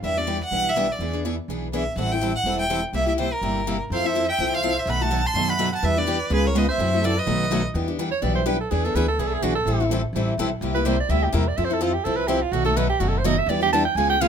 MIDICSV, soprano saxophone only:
0, 0, Header, 1, 2, 480
1, 0, Start_track
1, 0, Key_signature, 1, "minor"
1, 0, Tempo, 241158
1, 66, Time_signature, 4, 2, 24, 8
1, 13986, Tempo, 239425
1, 28527, End_track
2, 0, Start_track
2, 0, Title_t, "Soprano saxophone"
2, 0, Program_c, 0, 64
2, 7804, Note_on_c, 0, 72, 63
2, 8081, Note_off_c, 0, 72, 0
2, 8081, Note_on_c, 0, 72, 58
2, 8511, Note_off_c, 0, 72, 0
2, 8523, Note_on_c, 0, 76, 69
2, 9038, Note_on_c, 0, 72, 70
2, 9068, Note_off_c, 0, 76, 0
2, 9510, Note_off_c, 0, 72, 0
2, 9510, Note_on_c, 0, 72, 60
2, 9733, Note_on_c, 0, 78, 68
2, 9762, Note_off_c, 0, 72, 0
2, 10008, Note_off_c, 0, 78, 0
2, 10008, Note_on_c, 0, 78, 73
2, 10479, Note_on_c, 0, 81, 82
2, 10509, Note_off_c, 0, 78, 0
2, 10931, Note_on_c, 0, 78, 73
2, 10961, Note_off_c, 0, 81, 0
2, 11378, Note_off_c, 0, 78, 0
2, 11389, Note_on_c, 0, 78, 67
2, 11626, Note_on_c, 0, 71, 67
2, 11656, Note_off_c, 0, 78, 0
2, 11885, Note_off_c, 0, 71, 0
2, 11885, Note_on_c, 0, 71, 69
2, 12565, Note_off_c, 0, 71, 0
2, 12608, Note_on_c, 0, 68, 67
2, 12850, Note_on_c, 0, 70, 64
2, 12880, Note_off_c, 0, 68, 0
2, 13055, Note_on_c, 0, 71, 74
2, 13085, Note_off_c, 0, 70, 0
2, 13291, Note_off_c, 0, 71, 0
2, 13303, Note_on_c, 0, 72, 58
2, 14031, Note_on_c, 0, 69, 70
2, 14061, Note_off_c, 0, 72, 0
2, 14279, Note_on_c, 0, 71, 65
2, 14309, Note_off_c, 0, 69, 0
2, 15226, Note_off_c, 0, 71, 0
2, 16164, Note_on_c, 0, 73, 77
2, 16372, Note_on_c, 0, 74, 71
2, 16402, Note_off_c, 0, 73, 0
2, 16630, Note_off_c, 0, 74, 0
2, 16642, Note_on_c, 0, 72, 73
2, 16874, Note_on_c, 0, 71, 68
2, 16904, Note_off_c, 0, 72, 0
2, 17135, Note_off_c, 0, 71, 0
2, 17143, Note_on_c, 0, 69, 67
2, 17360, Note_on_c, 0, 68, 70
2, 17390, Note_off_c, 0, 69, 0
2, 17625, Note_on_c, 0, 69, 79
2, 17655, Note_off_c, 0, 68, 0
2, 17844, Note_on_c, 0, 71, 80
2, 17874, Note_off_c, 0, 69, 0
2, 18092, Note_off_c, 0, 71, 0
2, 18104, Note_on_c, 0, 69, 77
2, 18329, Note_on_c, 0, 68, 61
2, 18359, Note_off_c, 0, 69, 0
2, 18478, Note_on_c, 0, 69, 79
2, 18508, Note_off_c, 0, 68, 0
2, 18622, Note_on_c, 0, 68, 72
2, 18652, Note_off_c, 0, 69, 0
2, 18800, Note_on_c, 0, 66, 68
2, 18831, Note_off_c, 0, 68, 0
2, 19039, Note_off_c, 0, 66, 0
2, 19051, Note_on_c, 0, 69, 66
2, 19703, Note_off_c, 0, 69, 0
2, 21441, Note_on_c, 0, 71, 81
2, 21671, Note_on_c, 0, 72, 72
2, 21701, Note_off_c, 0, 71, 0
2, 21934, Note_off_c, 0, 72, 0
2, 21953, Note_on_c, 0, 74, 80
2, 22153, Note_on_c, 0, 76, 87
2, 22183, Note_off_c, 0, 74, 0
2, 22423, Note_on_c, 0, 67, 64
2, 22453, Note_off_c, 0, 76, 0
2, 22638, Note_on_c, 0, 70, 73
2, 22668, Note_off_c, 0, 67, 0
2, 22909, Note_on_c, 0, 74, 70
2, 22939, Note_off_c, 0, 70, 0
2, 23093, Note_on_c, 0, 76, 81
2, 23123, Note_off_c, 0, 74, 0
2, 23245, Note_on_c, 0, 72, 76
2, 23275, Note_off_c, 0, 76, 0
2, 23420, Note_on_c, 0, 69, 68
2, 23450, Note_off_c, 0, 72, 0
2, 23597, Note_on_c, 0, 65, 70
2, 23627, Note_off_c, 0, 69, 0
2, 23825, Note_on_c, 0, 67, 72
2, 23856, Note_off_c, 0, 65, 0
2, 24039, Note_on_c, 0, 69, 81
2, 24069, Note_off_c, 0, 67, 0
2, 24277, Note_on_c, 0, 71, 90
2, 24307, Note_off_c, 0, 69, 0
2, 24507, Note_on_c, 0, 67, 72
2, 24537, Note_off_c, 0, 71, 0
2, 24799, Note_on_c, 0, 65, 71
2, 24829, Note_off_c, 0, 67, 0
2, 25002, Note_on_c, 0, 66, 75
2, 25032, Note_off_c, 0, 65, 0
2, 25254, Note_off_c, 0, 66, 0
2, 25266, Note_on_c, 0, 69, 77
2, 25491, Note_on_c, 0, 71, 81
2, 25521, Note_off_c, 0, 69, 0
2, 25737, Note_off_c, 0, 71, 0
2, 25750, Note_on_c, 0, 67, 78
2, 25967, Note_on_c, 0, 66, 72
2, 25997, Note_off_c, 0, 67, 0
2, 26128, Note_on_c, 0, 69, 61
2, 26158, Note_off_c, 0, 66, 0
2, 26322, Note_on_c, 0, 72, 73
2, 26352, Note_off_c, 0, 69, 0
2, 26476, Note_on_c, 0, 75, 88
2, 26507, Note_off_c, 0, 72, 0
2, 26719, Note_on_c, 0, 76, 86
2, 26749, Note_off_c, 0, 75, 0
2, 26943, Note_on_c, 0, 74, 81
2, 26973, Note_off_c, 0, 76, 0
2, 27198, Note_off_c, 0, 74, 0
2, 27210, Note_on_c, 0, 67, 93
2, 27340, Note_off_c, 0, 67, 0
2, 27414, Note_on_c, 0, 81, 88
2, 27651, Note_off_c, 0, 81, 0
2, 27663, Note_on_c, 0, 79, 88
2, 27887, Note_on_c, 0, 80, 97
2, 27917, Note_off_c, 0, 79, 0
2, 28146, Note_off_c, 0, 80, 0
2, 28158, Note_on_c, 0, 79, 94
2, 28385, Note_on_c, 0, 77, 89
2, 28415, Note_off_c, 0, 79, 0
2, 28527, Note_off_c, 0, 77, 0
2, 28527, End_track
0, 0, End_of_file